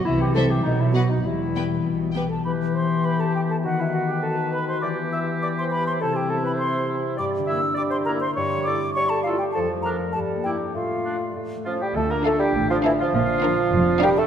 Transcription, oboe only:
\new Staff \with { instrumentName = "Oboe" } { \time 2/4 \key e \minor \tempo 4 = 101 r2 | r2 | g'2 | b'2 |
g'2 | e'2 | \key d \minor r8 e'8 r8 e'8 | r8 a'8 r8 a'8 |
r8 d'8 r8 e'8 | r8 d'8 r8 f'16 g'16 | a'16 bes'16 a'16 g'8 f'16 e'16 f'16 | f'4. g'16 a'16 | }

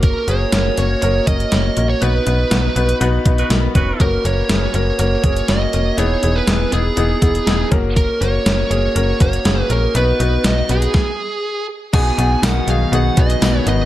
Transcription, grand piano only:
\new Staff \with { instrumentName = "Grand piano" } { \time 4/4 \key fis \major \tempo 4 = 121 << { r1 | r2. ais'8 b'8~ | b'8 r2. r8 | r1 |
r1 | r1 | r1 | } \\ { <ais cis' fis' ais'>8 <ais cis' fis' gis'>8 <ais cis' fis' ais'>8 <ais cis' fis' cis''>8 <ais cis' fis' ais'>8 <ais cis' fis' ais'>8 <ais cis' fis' ais'>8 <ais cis' fis' ais'>8 | <b dis' fis' b'>8 <b dis' fis' b'>8 <b dis' fis' b'>8 <b dis' fis' b'>8 <b dis' fis' b'>8 <b dis' fis' b'>8 r4 | <ais cis' fis' ais'>8 <ais cis' fis' ais'>8 <ais cis' fis' gis'>8 <ais cis' fis' ais'>8 <ais cis' fis' ais'>8 <ais cis' fis' gis'>8 <ais cis' fis' ais'>8 <ais cis' fis' ais'>8 | <b dis' e' gis'>8 <b dis' e' gis'>8 <b dis' e' gis'>8 <b dis' e' gis'>8 <b dis' e' gis'>8 <b dis' e' gis'>8 <b dis' e' gis'>8 <ais cis' fis' ais'>8~ |
<ais cis' fis' ais'>8 <ais cis' fis' ais'>8 <ais cis' fis' ais'>8 <ais cis' fis' gis'>8 <ais cis' fis' ais'>8 <ais cis' fis' ais'>8 <ais cis' fis' gis'>8 <ais cis' fis' ais'>8 | <b dis' fis' b'>8 <b dis' fis' b'>8 <b dis' fis' b'>8 <b dis' fis' b'>8 r2 | <b dis' fis' gis'>8 <b dis' fis' gis'>8 <b dis' fis' ais'>8 <b dis' fis' gis'>8 <b dis' fis' gis'>8 <b dis' fis' b'>8 <b dis' fis' b'>8 <b dis' fis' b'>8 | } >> }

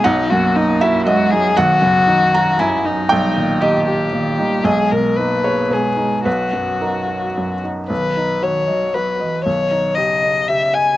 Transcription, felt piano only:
\new Staff \with { instrumentName = "Felt piano" } { \time 3/4 \key dis \phrygian \tempo 4 = 116 << { fis''4. e''8 dis''4 | fis''4. ais''8 gis''4 | g''4 dis''2 | dis''4. cis''8 b'4 |
b'4 ais'4. r8 | r2. | r2. | } \\ { b,,8 fis,8 dis'8 fis'8 fis,8 dis'8 | b,,8 fis,8 dis'8 fis'8 fis,8 dis'8 | b,,8 ais,8 dis'8 g'8 ais,8 dis'8 | b,,8 b,8 dis'8 gis'8 b,8 dis'8 |
b,,8 fis,8 dis'8 fis'8 fis,8 dis'8 | b,,8 dis'8 fis'8 dis''8 fis'8 dis''8 | b,,8 dis'8 g'8 dis''8 g'8 dis''8 | } >> }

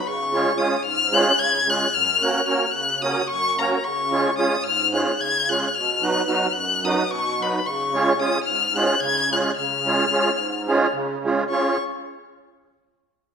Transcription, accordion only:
<<
  \new Staff \with { instrumentName = "Accordion" } { \time 7/8 \key des \mixolydian \tempo 4 = 110 r8 <aes des' f' aes' des''>8 <aes des' f' aes' des''>8 r8 <aes des' f' aes' des''>8 r8 <aes des' f' aes' des''>8 | r8 <bes des' ges' bes' des''>8 <bes des' ges' bes' des''>8 r8 <bes des' ges' bes' des''>8 r8 <bes des' ges' bes' des''>8 | r8 <aes des' f' aes' des''>8 <aes des' f' aes' des''>8 r8 <aes des' f' aes' des''>8 r8 <aes des' f' aes' des''>8 | r8 <ges ces' ees' ges' ces''>8 <ges ces' ees' ges' ces''>8 r8 <ges ces' ees' ges' ces''>8 r8 <ges ces' ees' ges' ces''>8 |
r8 <aes des' f' aes' des''>8 <aes des' f' aes' des''>8 r8 <aes des' f' aes' des''>8 r8 <aes des' f' aes' des''>8 | r8 <aes des' f' aes' des''>8 <aes des' f' aes' des''>8 r8 <aes des' f' aes' des''>8 r8 <aes des' f' aes' des''>8 | <des' f' aes' des''>8 r2. | }
  \new Staff \with { instrumentName = "Accordion" } { \clef bass \time 7/8 \key des \mixolydian des4 r8 aes,4 des4 | ges,4 r8 des4 ges,4 | des4 r8 aes,4 des4 | ces4 r8 ges,4 ces4 |
des4 r8 aes,4 des4 | des4 r8 aes,4 des4 | r2. r8 | }
>>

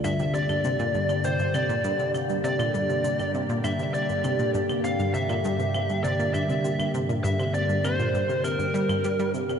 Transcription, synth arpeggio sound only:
\new Staff \with { instrumentName = "Synth arpeggio sound" } { \clef bass \time 4/4 \key g \dorian \tempo 4 = 100 g,16 c16 c16 g,16 c16 bes,16 g,16 c16 c16 g,16 c16 bes,16 g,16 c16 c16 g,16 | c16 bes,16 g,16 c16 c16 g,16 c16 bes,16 g,16 c16 c16 g,16 c16 bes,16 g,16 c16 | c16 g,16 c16 bes,16 g,16 c16 c16 g,16 c16 bes,16 g,16 c16 c16 g,16 c16 bes,16 | g,16 c16 c16 g,16 c16 bes,16 g,16 c16 c16 g,16 g16 g,16 g16 g16 c16 c16 | }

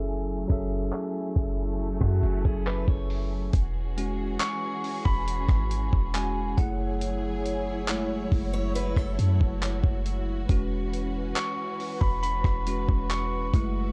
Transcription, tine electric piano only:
\new Staff \with { instrumentName = "Tine electric piano" } { \time 4/4 \key e \major \tempo 4 = 69 << { <fis cis' gis' a' e''>8 <fis cis' gis' a' e''>4 r2 r8 | r4 cis'''8. b''4~ b''16 gis''8 fis''8~ | fis''8 r2. r8 | r4 cis'''8. b''16 b''4 cis'''4 | } \\ { r1 | r8 <gis cis' fis'>2~ <gis cis' fis'>8 <gis cis' fis'>8 <a e' gis'>8~ | <a e' gis'>4 <gis a e'>8 r2 r8 | <gis cis' fis'>4. r4 <gis cis' fis'>8 r8 <gis a e'>8 | } >> }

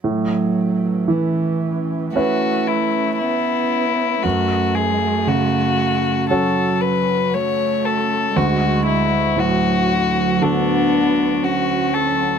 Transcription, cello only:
\new Staff \with { instrumentName = "Cello" } { \time 4/4 \key a \major \tempo 4 = 58 fis4 e4 a4 b4 | a2 fis4 a4 | gis4 fis4 b4 cis'4 | }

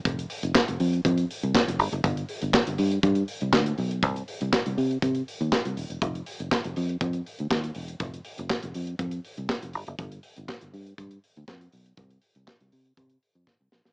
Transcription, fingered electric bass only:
\new Staff \with { instrumentName = "Fingered electric bass" } { \clef bass \time 4/4 \key f \mixolydian \tempo 4 = 121 f,,8 r16 f,,16 r16 f,,16 f,8 f,8 r16 c,16 r16 f,,16 g,,16 fis,,16 | g,,8 r16 g,,16 r16 g,,16 g,8 g,8 r16 c,16 d,8 b,,8 | c,8 r16 c,16 r16 c,16 c8 c8 r16 ees,16 r16 c,16 ees,,16 e,,16 | f,,8 r16 f,,16 r16 f,,16 f,8 f,8 r16 d,16 ees,8 e,,8 |
f,,8 r16 f,,16 r16 f,,16 f,8 f,8 r16 c,16 r16 f,,16 g,,16 fis,,16 | g,,8 r16 g,,16 r16 g,,16 g,8 g,8 r16 d,16 f,8 b,,8 | c,8 r16 c,16 r16 c,16 c8 c8 r16 f,16 r16 c,16 bes,,16 b,,16 | }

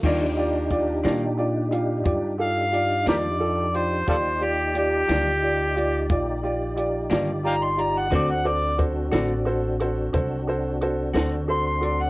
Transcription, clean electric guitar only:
\new Staff \with { instrumentName = "Clean electric guitar" } { \time 12/8 \key ees \lydian \tempo 4. = 59 <ees g bes d'>8 r4 <ees g bes d'>8 r2 r8 <ees g bes d'>8 r4 | r4. <ees g bes d'>8 r2 r8 <ees g bes d'>8 r4 | <d a c' fis'>8 r4 <d a c' fis'>8 r2 r8 <d a c' fis'>8 r4 | }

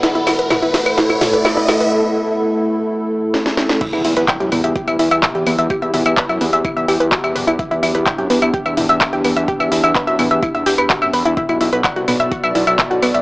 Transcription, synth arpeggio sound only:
\new Staff \with { instrumentName = "Synth arpeggio sound" } { \time 4/4 \key e \minor \tempo 4 = 127 e'16 e'16 e'16 b'16 e'16 e'16 e'16 b'16 e'16 e'16 e'16 b'16 e'16 e'16 e'16 b'16 | r1 | <e' e''>16 <e' e''>16 <e' e''>16 <b' b''>16 <g'' g'''>16 <g' g''>16 <b b'>16 <e'' e'''>16 <g' g''>16 <e'' e'''>16 <e' e''>16 <e'' e'''>16 <e'' e'''>16 <g' g''>16 <b b'>16 <e'' e'''>16 | <g' g''>16 <e'' e'''>16 <e' e''>16 <e'' e'''>16 <b' b''>16 <e'' e'''>16 <b b'>16 <e'' e'''>16 <e' e''>16 <e'' e'''>16 <g' g''>16 <b' b''>16 <fis' fis''>16 <e'' e'''>16 <b' b''>16 <e' e''>16 |
<e' e''>16 <e' e''>16 <e' e''>16 <b' b''>16 <g'' g'''>16 <g' g''>16 <b b'>16 <e'' e'''>16 <g' g''>16 <e'' e'''>16 <e' e''>16 <e'' e'''>16 <e'' e'''>16 <g' g''>16 <b b'>16 <e'' e'''>16 | <g' g''>16 <e'' e'''>16 <e' e''>16 <e'' e'''>16 <b' b''>16 <e'' e'''>16 <b b'>16 <e'' e'''>16 <e' e''>16 <e'' e'''>16 <g' g''>16 <b' b''>16 <fis' fis''>16 <e'' e'''>16 <b' b''>16 <e' e''>16 | <e' e''>16 <e' e''>16 <e' e''>16 <b' b''>16 <fis'' fis'''>16 <fis' fis''>16 <b b'>16 <e'' e'''>16 <fis' fis''>16 <e'' e'''>16 <e' e''>16 <e'' e'''>16 <e'' e'''>16 <fis' fis''>16 <b b'>16 <e'' e'''>16 | }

